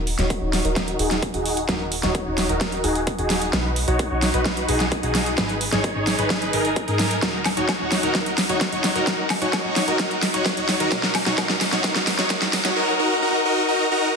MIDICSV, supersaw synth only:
0, 0, Header, 1, 2, 480
1, 0, Start_track
1, 0, Key_signature, -6, "minor"
1, 0, Tempo, 461538
1, 1754, Time_signature, 4, 2, 24, 8
1, 14726, End_track
2, 0, Start_track
2, 0, Title_t, "Supersaw synth"
2, 0, Program_c, 0, 81
2, 194, Note_on_c, 0, 63, 75
2, 194, Note_on_c, 0, 66, 70
2, 194, Note_on_c, 0, 73, 84
2, 398, Note_off_c, 0, 63, 0
2, 398, Note_off_c, 0, 66, 0
2, 398, Note_off_c, 0, 73, 0
2, 434, Note_on_c, 0, 63, 74
2, 434, Note_on_c, 0, 66, 67
2, 434, Note_on_c, 0, 73, 81
2, 638, Note_off_c, 0, 63, 0
2, 638, Note_off_c, 0, 66, 0
2, 638, Note_off_c, 0, 73, 0
2, 674, Note_on_c, 0, 63, 93
2, 674, Note_on_c, 0, 66, 84
2, 674, Note_on_c, 0, 70, 99
2, 1005, Note_off_c, 0, 63, 0
2, 1005, Note_off_c, 0, 66, 0
2, 1005, Note_off_c, 0, 70, 0
2, 1034, Note_on_c, 0, 63, 93
2, 1034, Note_on_c, 0, 66, 82
2, 1034, Note_on_c, 0, 68, 101
2, 1199, Note_off_c, 0, 63, 0
2, 1199, Note_off_c, 0, 66, 0
2, 1199, Note_off_c, 0, 68, 0
2, 1393, Note_on_c, 0, 63, 71
2, 1393, Note_on_c, 0, 66, 65
2, 1393, Note_on_c, 0, 68, 80
2, 1658, Note_off_c, 0, 63, 0
2, 1658, Note_off_c, 0, 66, 0
2, 1658, Note_off_c, 0, 68, 0
2, 1753, Note_on_c, 0, 63, 84
2, 1753, Note_on_c, 0, 66, 80
2, 1754, Note_on_c, 0, 70, 94
2, 1919, Note_off_c, 0, 63, 0
2, 1919, Note_off_c, 0, 66, 0
2, 1919, Note_off_c, 0, 70, 0
2, 2113, Note_on_c, 0, 66, 71
2, 2113, Note_on_c, 0, 73, 82
2, 2114, Note_on_c, 0, 63, 77
2, 2318, Note_off_c, 0, 63, 0
2, 2318, Note_off_c, 0, 66, 0
2, 2318, Note_off_c, 0, 73, 0
2, 2353, Note_on_c, 0, 63, 74
2, 2353, Note_on_c, 0, 66, 69
2, 2353, Note_on_c, 0, 73, 82
2, 2558, Note_off_c, 0, 63, 0
2, 2558, Note_off_c, 0, 66, 0
2, 2558, Note_off_c, 0, 73, 0
2, 2593, Note_on_c, 0, 63, 92
2, 2593, Note_on_c, 0, 66, 88
2, 2593, Note_on_c, 0, 70, 107
2, 2924, Note_off_c, 0, 70, 0
2, 2925, Note_off_c, 0, 63, 0
2, 2925, Note_off_c, 0, 66, 0
2, 2953, Note_on_c, 0, 63, 90
2, 2953, Note_on_c, 0, 66, 86
2, 2953, Note_on_c, 0, 68, 104
2, 3119, Note_off_c, 0, 63, 0
2, 3119, Note_off_c, 0, 66, 0
2, 3119, Note_off_c, 0, 68, 0
2, 3312, Note_on_c, 0, 66, 68
2, 3312, Note_on_c, 0, 68, 81
2, 3313, Note_on_c, 0, 63, 70
2, 3577, Note_off_c, 0, 68, 0
2, 3578, Note_off_c, 0, 63, 0
2, 3578, Note_off_c, 0, 66, 0
2, 3673, Note_on_c, 0, 63, 85
2, 3673, Note_on_c, 0, 66, 81
2, 3839, Note_off_c, 0, 63, 0
2, 3839, Note_off_c, 0, 66, 0
2, 4032, Note_on_c, 0, 63, 79
2, 4032, Note_on_c, 0, 66, 74
2, 4032, Note_on_c, 0, 73, 85
2, 4237, Note_off_c, 0, 63, 0
2, 4237, Note_off_c, 0, 66, 0
2, 4237, Note_off_c, 0, 73, 0
2, 4272, Note_on_c, 0, 63, 75
2, 4272, Note_on_c, 0, 73, 83
2, 4273, Note_on_c, 0, 66, 69
2, 4477, Note_off_c, 0, 63, 0
2, 4477, Note_off_c, 0, 66, 0
2, 4477, Note_off_c, 0, 73, 0
2, 4513, Note_on_c, 0, 63, 92
2, 4513, Note_on_c, 0, 66, 86
2, 4513, Note_on_c, 0, 71, 106
2, 4845, Note_off_c, 0, 63, 0
2, 4845, Note_off_c, 0, 66, 0
2, 4845, Note_off_c, 0, 71, 0
2, 4873, Note_on_c, 0, 63, 91
2, 4873, Note_on_c, 0, 66, 87
2, 4873, Note_on_c, 0, 68, 102
2, 5039, Note_off_c, 0, 63, 0
2, 5039, Note_off_c, 0, 66, 0
2, 5039, Note_off_c, 0, 68, 0
2, 5234, Note_on_c, 0, 63, 73
2, 5234, Note_on_c, 0, 66, 67
2, 5234, Note_on_c, 0, 68, 80
2, 5498, Note_off_c, 0, 63, 0
2, 5498, Note_off_c, 0, 66, 0
2, 5498, Note_off_c, 0, 68, 0
2, 5594, Note_on_c, 0, 71, 96
2, 5759, Note_off_c, 0, 71, 0
2, 5953, Note_on_c, 0, 63, 77
2, 5953, Note_on_c, 0, 68, 72
2, 5953, Note_on_c, 0, 73, 87
2, 6157, Note_off_c, 0, 63, 0
2, 6158, Note_off_c, 0, 68, 0
2, 6158, Note_off_c, 0, 73, 0
2, 6193, Note_on_c, 0, 63, 73
2, 6193, Note_on_c, 0, 68, 69
2, 6193, Note_on_c, 0, 73, 86
2, 6398, Note_off_c, 0, 63, 0
2, 6398, Note_off_c, 0, 68, 0
2, 6398, Note_off_c, 0, 73, 0
2, 6433, Note_on_c, 0, 63, 94
2, 6433, Note_on_c, 0, 68, 88
2, 6433, Note_on_c, 0, 71, 104
2, 6765, Note_off_c, 0, 63, 0
2, 6765, Note_off_c, 0, 68, 0
2, 6765, Note_off_c, 0, 71, 0
2, 6793, Note_on_c, 0, 63, 93
2, 6793, Note_on_c, 0, 68, 85
2, 6793, Note_on_c, 0, 70, 106
2, 6959, Note_off_c, 0, 63, 0
2, 6959, Note_off_c, 0, 68, 0
2, 6959, Note_off_c, 0, 70, 0
2, 7153, Note_on_c, 0, 63, 74
2, 7153, Note_on_c, 0, 68, 66
2, 7153, Note_on_c, 0, 70, 80
2, 7418, Note_off_c, 0, 63, 0
2, 7418, Note_off_c, 0, 68, 0
2, 7418, Note_off_c, 0, 70, 0
2, 7513, Note_on_c, 0, 63, 79
2, 7513, Note_on_c, 0, 66, 75
2, 7513, Note_on_c, 0, 70, 88
2, 7679, Note_off_c, 0, 63, 0
2, 7679, Note_off_c, 0, 66, 0
2, 7679, Note_off_c, 0, 70, 0
2, 7873, Note_on_c, 0, 63, 73
2, 7873, Note_on_c, 0, 66, 64
2, 7873, Note_on_c, 0, 73, 80
2, 8077, Note_off_c, 0, 63, 0
2, 8077, Note_off_c, 0, 66, 0
2, 8078, Note_off_c, 0, 73, 0
2, 8114, Note_on_c, 0, 63, 72
2, 8114, Note_on_c, 0, 66, 65
2, 8114, Note_on_c, 0, 73, 76
2, 8318, Note_off_c, 0, 63, 0
2, 8318, Note_off_c, 0, 66, 0
2, 8318, Note_off_c, 0, 73, 0
2, 8354, Note_on_c, 0, 63, 88
2, 8354, Note_on_c, 0, 66, 81
2, 8354, Note_on_c, 0, 70, 98
2, 8455, Note_off_c, 0, 63, 0
2, 8455, Note_off_c, 0, 66, 0
2, 8455, Note_off_c, 0, 70, 0
2, 8473, Note_on_c, 0, 63, 83
2, 8473, Note_on_c, 0, 66, 77
2, 8473, Note_on_c, 0, 70, 93
2, 8639, Note_off_c, 0, 63, 0
2, 8639, Note_off_c, 0, 66, 0
2, 8639, Note_off_c, 0, 70, 0
2, 8833, Note_on_c, 0, 73, 82
2, 8834, Note_on_c, 0, 63, 75
2, 8834, Note_on_c, 0, 66, 68
2, 9038, Note_off_c, 0, 63, 0
2, 9038, Note_off_c, 0, 66, 0
2, 9038, Note_off_c, 0, 73, 0
2, 9074, Note_on_c, 0, 63, 70
2, 9074, Note_on_c, 0, 66, 65
2, 9074, Note_on_c, 0, 73, 76
2, 9278, Note_off_c, 0, 63, 0
2, 9278, Note_off_c, 0, 66, 0
2, 9278, Note_off_c, 0, 73, 0
2, 9313, Note_on_c, 0, 63, 88
2, 9313, Note_on_c, 0, 66, 82
2, 9313, Note_on_c, 0, 70, 98
2, 9414, Note_off_c, 0, 63, 0
2, 9414, Note_off_c, 0, 66, 0
2, 9414, Note_off_c, 0, 70, 0
2, 9434, Note_on_c, 0, 63, 82
2, 9434, Note_on_c, 0, 70, 93
2, 9599, Note_off_c, 0, 63, 0
2, 9599, Note_off_c, 0, 70, 0
2, 9793, Note_on_c, 0, 63, 73
2, 9793, Note_on_c, 0, 66, 68
2, 9794, Note_on_c, 0, 73, 82
2, 9998, Note_off_c, 0, 63, 0
2, 9998, Note_off_c, 0, 66, 0
2, 9998, Note_off_c, 0, 73, 0
2, 10033, Note_on_c, 0, 63, 73
2, 10033, Note_on_c, 0, 66, 68
2, 10033, Note_on_c, 0, 73, 80
2, 10238, Note_off_c, 0, 63, 0
2, 10238, Note_off_c, 0, 66, 0
2, 10238, Note_off_c, 0, 73, 0
2, 10274, Note_on_c, 0, 63, 92
2, 10274, Note_on_c, 0, 66, 85
2, 10274, Note_on_c, 0, 70, 99
2, 10375, Note_off_c, 0, 63, 0
2, 10375, Note_off_c, 0, 66, 0
2, 10375, Note_off_c, 0, 70, 0
2, 10753, Note_on_c, 0, 66, 71
2, 10754, Note_on_c, 0, 63, 75
2, 10754, Note_on_c, 0, 73, 87
2, 10958, Note_off_c, 0, 63, 0
2, 10958, Note_off_c, 0, 66, 0
2, 10958, Note_off_c, 0, 73, 0
2, 10993, Note_on_c, 0, 63, 73
2, 10993, Note_on_c, 0, 66, 66
2, 10993, Note_on_c, 0, 73, 80
2, 11198, Note_off_c, 0, 63, 0
2, 11198, Note_off_c, 0, 66, 0
2, 11198, Note_off_c, 0, 73, 0
2, 11234, Note_on_c, 0, 63, 91
2, 11234, Note_on_c, 0, 66, 84
2, 11234, Note_on_c, 0, 70, 101
2, 11335, Note_off_c, 0, 63, 0
2, 11335, Note_off_c, 0, 66, 0
2, 11335, Note_off_c, 0, 70, 0
2, 11353, Note_on_c, 0, 63, 86
2, 11353, Note_on_c, 0, 66, 79
2, 11353, Note_on_c, 0, 70, 96
2, 11519, Note_off_c, 0, 63, 0
2, 11519, Note_off_c, 0, 66, 0
2, 11519, Note_off_c, 0, 70, 0
2, 11713, Note_on_c, 0, 63, 79
2, 11713, Note_on_c, 0, 66, 70
2, 11713, Note_on_c, 0, 73, 87
2, 11814, Note_off_c, 0, 63, 0
2, 11814, Note_off_c, 0, 66, 0
2, 11814, Note_off_c, 0, 73, 0
2, 11833, Note_on_c, 0, 63, 85
2, 11833, Note_on_c, 0, 66, 78
2, 11833, Note_on_c, 0, 70, 98
2, 11999, Note_off_c, 0, 63, 0
2, 11999, Note_off_c, 0, 66, 0
2, 11999, Note_off_c, 0, 70, 0
2, 12193, Note_on_c, 0, 63, 81
2, 12193, Note_on_c, 0, 66, 74
2, 12194, Note_on_c, 0, 73, 90
2, 12295, Note_off_c, 0, 63, 0
2, 12295, Note_off_c, 0, 66, 0
2, 12295, Note_off_c, 0, 73, 0
2, 12313, Note_on_c, 0, 66, 80
2, 12314, Note_on_c, 0, 63, 89
2, 12314, Note_on_c, 0, 70, 99
2, 12479, Note_off_c, 0, 63, 0
2, 12479, Note_off_c, 0, 66, 0
2, 12479, Note_off_c, 0, 70, 0
2, 12673, Note_on_c, 0, 63, 81
2, 12673, Note_on_c, 0, 73, 88
2, 12674, Note_on_c, 0, 66, 74
2, 12774, Note_off_c, 0, 73, 0
2, 12775, Note_off_c, 0, 63, 0
2, 12775, Note_off_c, 0, 66, 0
2, 12794, Note_on_c, 0, 63, 91
2, 12794, Note_on_c, 0, 66, 82
2, 12794, Note_on_c, 0, 70, 97
2, 12959, Note_off_c, 0, 63, 0
2, 12959, Note_off_c, 0, 66, 0
2, 12959, Note_off_c, 0, 70, 0
2, 13154, Note_on_c, 0, 63, 80
2, 13154, Note_on_c, 0, 66, 72
2, 13154, Note_on_c, 0, 73, 86
2, 13255, Note_off_c, 0, 63, 0
2, 13255, Note_off_c, 0, 66, 0
2, 13255, Note_off_c, 0, 73, 0
2, 13274, Note_on_c, 0, 66, 83
2, 13275, Note_on_c, 0, 63, 89
2, 13275, Note_on_c, 0, 70, 100
2, 13440, Note_off_c, 0, 63, 0
2, 13440, Note_off_c, 0, 66, 0
2, 13440, Note_off_c, 0, 70, 0
2, 13514, Note_on_c, 0, 63, 91
2, 13514, Note_on_c, 0, 66, 83
2, 13514, Note_on_c, 0, 70, 101
2, 13679, Note_off_c, 0, 63, 0
2, 13679, Note_off_c, 0, 66, 0
2, 13679, Note_off_c, 0, 70, 0
2, 13754, Note_on_c, 0, 63, 88
2, 13754, Note_on_c, 0, 66, 84
2, 13754, Note_on_c, 0, 70, 99
2, 13919, Note_off_c, 0, 63, 0
2, 13919, Note_off_c, 0, 66, 0
2, 13919, Note_off_c, 0, 70, 0
2, 13994, Note_on_c, 0, 63, 92
2, 13994, Note_on_c, 0, 66, 86
2, 13994, Note_on_c, 0, 70, 103
2, 14159, Note_off_c, 0, 63, 0
2, 14159, Note_off_c, 0, 66, 0
2, 14159, Note_off_c, 0, 70, 0
2, 14233, Note_on_c, 0, 63, 88
2, 14233, Note_on_c, 0, 66, 84
2, 14233, Note_on_c, 0, 70, 101
2, 14399, Note_off_c, 0, 63, 0
2, 14399, Note_off_c, 0, 66, 0
2, 14399, Note_off_c, 0, 70, 0
2, 14473, Note_on_c, 0, 66, 84
2, 14474, Note_on_c, 0, 63, 92
2, 14474, Note_on_c, 0, 70, 103
2, 14639, Note_off_c, 0, 63, 0
2, 14639, Note_off_c, 0, 66, 0
2, 14639, Note_off_c, 0, 70, 0
2, 14726, End_track
0, 0, End_of_file